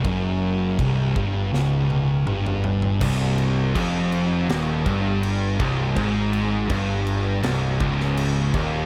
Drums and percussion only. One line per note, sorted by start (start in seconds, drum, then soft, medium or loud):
0.05 kick loud
0.05 crash medium
0.79 kick loud
0.79 crash medium
1.16 kick loud
1.54 snare medium
1.90 high tom medium
2.27 mid tom medium
2.46 mid tom medium
2.64 floor tom medium
2.82 floor tom medium
3.01 kick loud
3.01 crash loud
3.01 crash medium
3.38 crash medium
3.75 kick loud
3.75 crash medium
4.12 crash medium
4.49 snare loud
4.49 crash medium
4.86 kick loud
4.86 crash medium
5.23 crash medium
5.60 kick loud
5.60 crash medium
5.96 kick loud
5.96 crash medium
6.33 crash medium
6.70 kick loud
6.70 crash medium
7.07 crash medium
7.43 snare loud
7.43 crash medium
7.80 kick loud
7.80 crash medium
8.00 snare soft
8.17 crash loud
8.54 kick loud
8.54 crash medium